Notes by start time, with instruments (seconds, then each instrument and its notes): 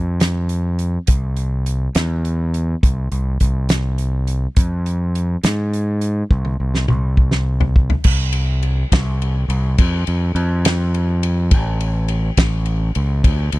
Already playing: fingered electric bass F2
0.20 snare, closed hi-hat
0.49 closed hi-hat
0.79 closed hi-hat
1.07 fingered electric bass C2, kick, closed hi-hat
1.37 closed hi-hat
1.66 closed hi-hat
1.95 fingered electric bass E2, snare, closed hi-hat
2.25 closed hi-hat
2.54 closed hi-hat
2.83 fingered electric bass C2, kick, closed hi-hat
3.12 fingered electric bass C2, closed hi-hat
3.40 fingered electric bass C2, kick, closed hi-hat
3.69 snare, closed hi-hat
3.98 closed hi-hat
4.27 closed hi-hat
4.56 fingered electric bass F2, kick, closed hi-hat
4.86 closed hi-hat
5.15 closed hi-hat
5.44 fingered electric bass G#2, snare, closed hi-hat
5.74 closed hi-hat
6.01 closed hi-hat
6.31 fingered electric bass C2, kick
6.45 high tom
6.60 fingered electric bass C2
6.75 snare
6.88 fingered electric bass C2, mid tom
7.17 kick
7.31 snare
7.61 floor tom
7.76 kick
7.90 floor tom
8.04 fingered electric bass C2, kick, crash
8.33 ride
8.63 ride
8.92 fingered electric bass C2, kick, snare, ride
9.22 ride
9.48 fingered electric bass C2, ride
9.78 fingered electric bass F2, kick, ride
10.07 fingered electric bass F2, ride
10.35 fingered electric bass F2, ride
10.65 snare, ride
10.94 ride
11.23 ride
11.51 fingered electric bass A1, kick, ride
11.81 ride
12.08 ride
12.37 fingered electric bass A1, kick, snare, ride
12.65 ride
12.95 fingered electric bass C#2, ride
13.24 fingered electric bass D2, kick, ride
13.52 fingered electric bass D2, ride